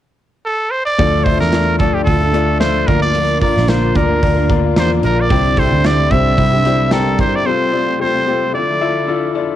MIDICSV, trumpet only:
0, 0, Header, 1, 2, 480
1, 0, Start_track
1, 0, Key_signature, -1, "minor"
1, 0, Tempo, 539568
1, 883, Time_signature, 4, 2, 24, 8
1, 8504, End_track
2, 0, Start_track
2, 0, Title_t, "Trumpet"
2, 0, Program_c, 0, 56
2, 407, Note_on_c, 0, 69, 92
2, 631, Note_on_c, 0, 72, 91
2, 645, Note_off_c, 0, 69, 0
2, 755, Note_off_c, 0, 72, 0
2, 760, Note_on_c, 0, 74, 114
2, 1103, Note_on_c, 0, 72, 96
2, 1116, Note_off_c, 0, 74, 0
2, 1242, Note_off_c, 0, 72, 0
2, 1247, Note_on_c, 0, 70, 94
2, 1573, Note_off_c, 0, 70, 0
2, 1588, Note_on_c, 0, 69, 87
2, 1724, Note_on_c, 0, 67, 81
2, 1738, Note_off_c, 0, 69, 0
2, 1814, Note_off_c, 0, 67, 0
2, 1819, Note_on_c, 0, 69, 91
2, 2276, Note_off_c, 0, 69, 0
2, 2315, Note_on_c, 0, 72, 100
2, 2552, Note_on_c, 0, 70, 90
2, 2565, Note_off_c, 0, 72, 0
2, 2683, Note_off_c, 0, 70, 0
2, 2688, Note_on_c, 0, 74, 112
2, 3013, Note_off_c, 0, 74, 0
2, 3034, Note_on_c, 0, 74, 96
2, 3282, Note_on_c, 0, 72, 85
2, 3296, Note_off_c, 0, 74, 0
2, 3528, Note_on_c, 0, 70, 88
2, 3542, Note_off_c, 0, 72, 0
2, 4005, Note_off_c, 0, 70, 0
2, 4261, Note_on_c, 0, 72, 99
2, 4365, Note_off_c, 0, 72, 0
2, 4491, Note_on_c, 0, 70, 92
2, 4632, Note_on_c, 0, 74, 105
2, 4645, Note_off_c, 0, 70, 0
2, 4975, Note_on_c, 0, 72, 96
2, 4988, Note_off_c, 0, 74, 0
2, 5214, Note_on_c, 0, 74, 101
2, 5227, Note_off_c, 0, 72, 0
2, 5436, Note_on_c, 0, 76, 118
2, 5450, Note_off_c, 0, 74, 0
2, 6158, Note_off_c, 0, 76, 0
2, 6165, Note_on_c, 0, 69, 90
2, 6386, Note_off_c, 0, 69, 0
2, 6409, Note_on_c, 0, 72, 93
2, 6543, Note_on_c, 0, 74, 99
2, 6556, Note_off_c, 0, 72, 0
2, 6636, Note_on_c, 0, 72, 107
2, 6649, Note_off_c, 0, 74, 0
2, 7118, Note_off_c, 0, 72, 0
2, 7129, Note_on_c, 0, 72, 99
2, 7571, Note_off_c, 0, 72, 0
2, 7603, Note_on_c, 0, 74, 93
2, 8286, Note_off_c, 0, 74, 0
2, 8504, End_track
0, 0, End_of_file